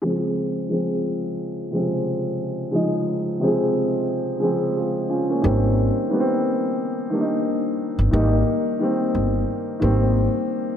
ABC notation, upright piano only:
X:1
M:4/4
L:1/16
Q:"Swing 16ths" 1/4=89
K:Bbdor
V:1 name="Upright piano"
z16 | z12 [FA]2 [DF] [B,D]- | [B,D] z12 z3 | z16 |]
V:2 name="Upright piano" clef=bass
[D,F,A,C]2 z2 [D,F,A,C]4 z2 [C,D,F,A,C]4 z2 | [D,F,A,E]2 z2 [C,D,F,A,C]4 z2 [D,F,A,C]4 z2 | [E,G,B,C]2 z2 [E,G,B,_C=C]4 z2 [E,G,B,=DE]4 z2 | [E,G,B,E]2 z2 [E,G,B,C]4 z2 [E,G,B,C]4 z2 |]